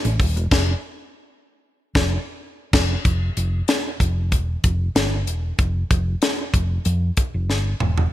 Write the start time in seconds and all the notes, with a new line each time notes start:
0.05 A1, closed hi-hat
0.20 D#1, kick, open hi-hat
0.36 E1, closed hi-hat
0.51 F1, kick, snare, crash
1.95 F1, kick, snare
2.73 F1, kick, snare, crash
3.05 F1, kick, closed hi-hat
3.37 F1, closed hi-hat
3.68 snare, closed hi-hat
4.00 F1, kick, closed hi-hat
4.32 E1, kick, closed hi-hat
4.64 F1, kick, closed hi-hat
4.95 G1, snare, closed hi-hat
5.27 E1, closed hi-hat
5.59 F1, kick, closed hi-hat
5.91 F1, kick, closed hi-hat
6.22 snare, closed hi-hat
6.54 F1, kick, closed hi-hat
6.85 F2, closed hi-hat
7.17 kick, closed hi-hat
7.34 F1
7.49 G1, snare
7.80 E1, mid tom
7.98 floor tom